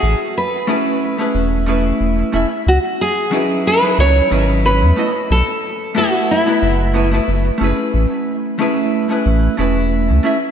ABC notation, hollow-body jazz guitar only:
X:1
M:4/4
L:1/16
Q:"Swing 16ths" 1/4=91
K:Alyd
V:1 name="Hollow-body jazz guitar"
z4 [A,CEGB]3 [A,CEGB]3 [A,CEGB]4 [A,CEGe] z | z4 [F,CDEB]3 [F,CDEB]3 [F,CDEB]4 [A,B,EFd] z | z4 [A,B,EFB]3 [A,B,EFB]3 [A,B,EFB] [A,B,EFB] z2 [A,CEGB]2- | [A,CEGB]4 [A,CEGB]3 [A,CEGB]3 [A,CEGB]4 [A,CEGe] z |]